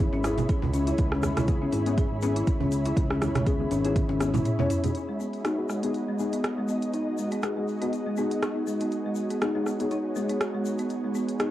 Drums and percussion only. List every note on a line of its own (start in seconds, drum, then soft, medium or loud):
0.00 high conga medium
0.13 djembe slap medium
0.24 cross-stick medium
0.24 open hi-hat medium
0.24 djembe tone medium
0.24 shaker medium
0.37 open hi-hat soft
0.37 djembe slap medium
0.37 low conga loud
0.37 shaker soft
0.49 kick loud
0.49 closed hi-hat soft
0.49 shaker soft
0.62 djembe slap medium
0.62 djembe bass medium
0.62 low conga loud
0.73 open hi-hat medium
0.73 shaker medium
0.87 closed hi-hat medium
0.87 djembe tone medium
0.87 shaker medium
0.98 kick loud
0.98 closed hi-hat soft
0.98 shaker soft
1.12 cross-stick medium
1.12 djembe tone medium
1.23 cross-stick medium
1.23 open hi-hat medium
1.23 high conga medium
1.23 djembe bass loud
1.23 shaker medium
1.37 cross-stick medium
1.37 closed hi-hat medium
1.37 djembe tone medium
1.37 low conga medium
1.37 shaker medium
1.48 kick loud
1.48 closed hi-hat soft
1.48 shaker soft
1.73 open hi-hat medium
1.73 djembe slap medium
1.73 djembe tone medium
1.73 shaker medium
1.86 closed hi-hat medium
1.86 shaker medium
1.98 kick loud
1.98 closed hi-hat soft
1.98 shaker soft
2.22 open hi-hat medium
2.22 djembe slap loud
2.22 shaker medium
2.36 closed hi-hat medium
2.36 shaker medium
2.47 kick loud
2.47 closed hi-hat soft
2.47 shaker soft
2.60 djembe tone medium
2.60 high conga medium
2.60 low conga loud
2.72 open hi-hat medium
2.72 shaker medium
2.85 closed hi-hat medium
2.85 djembe slap medium
2.85 shaker soft
2.96 kick loud
2.96 closed hi-hat soft
2.96 shaker soft
3.10 cross-stick medium
3.10 djembe tone medium
3.21 cross-stick medium
3.21 open hi-hat medium
3.21 high conga medium
3.21 djembe bass medium
3.21 shaker medium
3.35 cross-stick medium
3.35 closed hi-hat medium
3.35 djembe tone medium
3.35 low conga loud
3.35 shaker soft
3.46 kick loud
3.46 closed hi-hat soft
3.46 shaker soft
3.59 high conga medium
3.71 open hi-hat medium
3.71 djembe slap medium
3.71 djembe tone medium
3.71 shaker medium
3.85 closed hi-hat medium
3.85 shaker soft
3.96 kick loud
3.96 closed hi-hat soft
3.96 high tom medium
3.96 high conga medium
3.96 shaker soft
4.09 high tom medium
4.09 djembe slap medium
4.21 cross-stick medium
4.21 open hi-hat medium
4.21 djembe tone medium
4.21 shaker loud
4.34 open hi-hat medium
4.34 mid tom medium
4.34 djembe slap medium
4.34 low conga loud
4.34 shaker medium
4.45 closed hi-hat soft
4.45 mid tom medium
4.45 shaker soft
4.59 djembe slap loud
4.59 low conga loud
4.59 djembe bass loud
4.70 mid tom loud
4.70 open hi-hat medium
4.70 shaker medium
4.84 closed hi-hat medium
4.84 mid tom medium
4.84 djembe tone medium
4.84 low conga medium
4.84 shaker medium
4.95 closed hi-hat soft
4.95 shaker soft
5.20 shaker medium
5.33 closed hi-hat medium
5.33 shaker soft
5.45 cross-stick medium
5.45 closed hi-hat soft
5.45 shaker soft
5.69 cross-stick medium
5.69 shaker medium
5.83 closed hi-hat medium
5.83 shaker soft
5.94 closed hi-hat soft
5.94 shaker soft
6.19 shaker medium
6.32 closed hi-hat medium
6.32 shaker medium
6.44 cross-stick loud
6.44 closed hi-hat soft
6.44 shaker soft
6.68 shaker medium
6.82 closed hi-hat medium
6.82 shaker soft
6.93 closed hi-hat soft
6.93 shaker soft
7.18 shaker loud
7.31 closed hi-hat medium
7.31 shaker medium
7.42 cross-stick loud
7.42 closed hi-hat soft
7.42 shaker soft
7.68 shaker loud
7.82 closed hi-hat medium
7.82 shaker soft
7.93 closed hi-hat soft
7.93 shaker soft
8.17 shaker medium
8.31 closed hi-hat medium
8.31 shaker soft
8.42 cross-stick loud
8.42 closed hi-hat soft
8.42 shaker soft
8.67 shaker loud
8.80 closed hi-hat medium
8.80 shaker soft
8.91 closed hi-hat soft
8.91 shaker soft
9.15 shaker medium
9.30 closed hi-hat medium
9.30 shaker medium
9.41 cross-stick loud
9.41 closed hi-hat soft
9.41 shaker soft
9.66 cross-stick medium
9.66 shaker medium
9.80 closed hi-hat medium
9.80 shaker medium
9.91 closed hi-hat soft
9.91 shaker soft
10.16 shaker loud
10.29 closed hi-hat medium
10.29 shaker medium
10.41 cross-stick loud
10.41 closed hi-hat soft
10.41 shaker soft
10.65 shaker medium
10.78 closed hi-hat soft
10.78 shaker soft
10.90 closed hi-hat soft
10.90 shaker soft
11.15 shaker medium
11.29 closed hi-hat soft
11.29 shaker medium
11.39 cross-stick loud
11.39 closed hi-hat soft
11.39 shaker soft